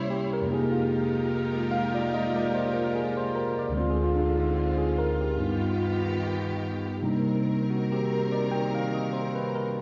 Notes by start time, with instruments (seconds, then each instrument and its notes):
Already playing: tine electric piano C3 G3 A#3 C#4 E4, string section A#3 E4 C5 C#5
0.10 tine electric piano G4
0.33 tine electric piano A#4
0.41 tine electric piano F2 C3, string section G#3 D#4 F4 G4 A#4
0.46 tine electric piano G#3 A#3
0.50 tine electric piano D#4 G4 G#4
0.72 tine electric piano F4
1.71 tine electric piano F5
1.95 tine electric piano D5
2.14 tine electric piano D#5
2.36 tine electric piano D5
2.55 tine electric piano C5
2.74 tine electric piano A#4
2.96 tine electric piano G#4
3.17 tine electric piano C5
3.35 tine electric piano A#4
3.59 tine electric piano D5
3.69 tine electric piano D2 D3, string section D3 C4 F4
3.74 tine electric piano G#3 C4 C5
3.80 tine electric piano F4
3.90 tine electric piano G#4
4.04 tine electric piano F4
4.16 tine electric piano D4
4.36 tine electric piano D#4
4.57 tine electric piano F4
4.78 tine electric piano G#4
4.98 tine electric piano A#4
5.21 tine electric piano G4
5.37 tine electric piano G2 G3 B3 D#4 F4, string section D#3 B3 G4
7.00 tine electric piano C3 G3 A#3 D4 D#4, string section D#3 C4 A#4
7.70 tine electric piano F#4
7.92 tine electric piano G4
8.13 tine electric piano A#4
8.32 tine electric piano D5
8.52 tine electric piano G5
8.75 tine electric piano F5
8.94 tine electric piano D#5
9.13 tine electric piano C5
9.35 tine electric piano B4
9.55 tine electric piano A#4